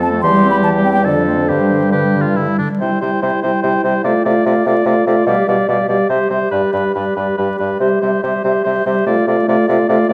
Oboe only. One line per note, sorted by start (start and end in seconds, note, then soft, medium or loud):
0.00 0.21 A4 soft
0.23 1.06 G4 soft
1.05 1.50 A4 soft
1.48 1.88 G4 soft
1.92 2.23 G4 soft
2.22 2.37 F4 soft
2.36 2.58 E4 soft
2.58 2.68 D4 soft
2.80 3.01 C5 soft
3.01 3.21 C5 soft
3.22 3.42 C5 soft
3.43 3.62 C5 soft
3.63 3.83 C5 soft
3.84 4.04 C5 soft
4.04 4.25 D5 soft
4.25 4.45 D5 soft
4.46 4.66 D5 soft
4.67 4.86 D5 soft
4.87 5.07 D5 medium
5.07 5.26 D5 soft
5.27 5.47 D5 soft
5.49 5.68 D5 soft
5.69 5.88 D5 soft
5.88 6.09 D5 soft
6.09 6.30 C5 soft
6.30 6.51 C5 soft
6.51 6.72 B4 soft
6.72 6.94 B4 soft
6.94 7.15 B4 soft
7.16 7.37 B4 soft
7.38 7.58 B4 soft
7.58 7.79 B4 soft
7.80 8.01 C5 soft
8.02 8.23 C5 soft
8.23 8.44 C5 soft
8.45 8.64 C5 soft
8.65 8.85 C5 soft
8.86 9.06 C5 soft
9.06 9.27 D5 soft
9.27 9.48 D5 soft
9.49 9.67 D5 soft
9.68 9.88 D5 soft
9.89 10.08 D5 medium
10.09 10.13 D5 medium